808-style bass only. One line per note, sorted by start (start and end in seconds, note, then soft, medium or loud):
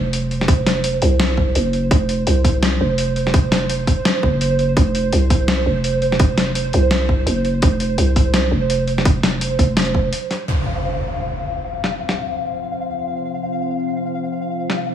0.00 1.01 F1 medium
1.02 1.54 C2 loud
1.56 1.90 F#1 loud
1.91 2.26 F1 loud
2.27 2.79 C2 medium
2.81 3.87 F1 loud
4.23 4.76 F#1 medium
4.77 5.11 F1 loud
5.13 5.65 C2 medium
5.66 6.72 F1 medium
6.74 7.26 C2 medium
7.27 7.61 F#1 loud
7.63 7.97 F1 loud
7.98 8.51 C2 medium
8.51 9.58 F1 loud
9.59 10.13 F1 medium